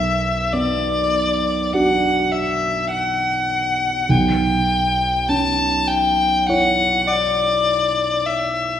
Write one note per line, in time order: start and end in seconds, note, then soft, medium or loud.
0.00 4.05 B1 soft
0.00 0.54 E5 soft
0.53 2.43 B3 soft
0.53 1.74 D5 medium
1.73 4.05 D4 soft
1.73 4.05 F#4 soft
1.73 2.33 F#5 medium
2.32 2.90 E5 medium
2.91 4.11 F#5 medium
4.09 8.80 B1 soft
4.09 5.30 G5 medium
5.29 7.21 C#4 soft
5.29 5.88 A5 medium
5.87 6.48 G5 medium
6.47 8.80 E4 soft
6.47 8.80 C#5 soft
6.47 7.09 F#5 medium
7.07 8.27 D5 medium
8.26 8.80 E5 soft